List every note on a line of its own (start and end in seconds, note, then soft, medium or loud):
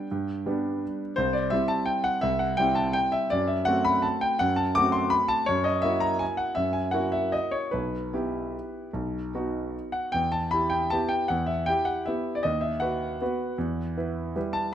0.00 0.99 G5 medium
0.11 0.45 G2 soft
0.46 1.13 G3 soft
0.46 1.14 B3 soft
0.46 1.14 D4 soft
1.16 1.51 C2 medium
1.16 1.34 C5 medium
1.33 1.51 D5 medium
1.50 2.20 G3 soft
1.50 2.20 C4 soft
1.50 2.20 E4 soft
1.50 1.69 E5 medium
1.68 1.87 A5 medium
1.86 2.05 G5 medium
2.04 2.23 F#5 medium
2.21 2.57 C2 medium
2.21 2.40 E5 medium
2.39 2.58 F#5 medium
2.57 3.27 G3 soft
2.57 3.27 C4 soft
2.57 3.28 E4 soft
2.57 2.76 G5 medium
2.75 2.94 A5 medium
2.93 3.13 G5 medium
3.12 3.30 E5 medium
3.30 3.66 F#2 medium
3.30 3.48 D5 medium
3.47 3.66 E5 medium
3.65 4.36 A3 soft
3.65 4.36 C4 soft
3.65 4.37 F#4 soft
3.65 3.85 F#5 medium
3.85 4.04 B5 medium
4.02 4.22 A5 medium
4.21 4.40 G5 medium
4.39 4.75 F#2 medium
4.39 4.57 F#5 medium
4.56 4.75 A5 medium
4.75 5.45 A3 soft
4.75 5.45 C4 soft
4.75 5.45 F#4 soft
4.75 4.94 D6 loud
4.92 5.11 C6 medium
5.10 5.29 B5 medium
5.28 5.47 A5 medium
5.46 5.83 F#2 medium
5.46 5.65 C#5 medium
5.64 5.83 D#5 medium
5.82 6.54 A#3 soft
5.82 6.54 E4 soft
5.82 6.54 F#4 soft
5.82 6.01 E5 medium
6.00 6.20 A#5 medium
6.19 6.39 G#5 medium
6.37 6.56 F#5 medium
6.55 6.93 F#2 soft
6.55 6.74 E5 medium
6.73 6.93 G#5 medium
6.91 7.69 A#3 soft
6.91 7.69 E4 soft
6.91 7.69 F#4 soft
6.91 7.12 F#5 medium
7.12 7.33 E5 medium
7.32 7.53 D#5 medium
7.51 7.72 C#5 medium
7.71 8.12 B1 soft
7.71 9.73 B4 medium
8.13 8.90 B3 soft
8.13 8.90 E4 soft
8.13 8.90 G4 soft
8.93 9.32 B1 soft
9.35 10.10 B3 soft
9.35 10.11 D#4 soft
9.35 10.11 F#4 soft
9.92 10.13 F#5 medium
10.12 10.51 E2 soft
10.12 10.32 G5 medium
10.32 10.52 A5 medium
10.51 10.88 E4 soft
10.51 10.88 G4 soft
10.51 10.71 B5 medium
10.70 10.90 G5 medium
10.90 11.26 B3 soft
10.90 11.27 E4 soft
10.90 11.27 G4 soft
10.90 11.10 A5 medium
11.09 11.29 G5 medium
11.28 11.67 E2 medium
11.28 11.48 F#5 medium
11.46 11.67 E5 medium
11.66 12.03 E4 soft
11.66 12.04 G4 soft
11.66 11.87 G5 medium
11.85 12.06 F#5 medium
12.06 12.41 B3 soft
12.06 12.41 E4 soft
12.06 12.42 G4 soft
12.06 12.35 E5 medium
12.35 12.45 D5 medium
12.43 12.81 D#2 soft
12.43 12.62 D#5 medium
12.61 12.81 E5 medium
12.80 13.17 F#4 soft
12.80 13.17 B4 soft
12.80 14.34 F#5 medium
13.21 13.55 B3 soft
13.21 13.56 F#4 soft
13.21 13.56 B4 soft
13.58 13.95 E2 medium
13.97 14.32 E4 soft
13.97 14.32 B4 soft
14.36 14.70 G3 soft
14.36 14.70 E4 soft
14.36 14.70 B4 soft
14.53 14.73 A5 medium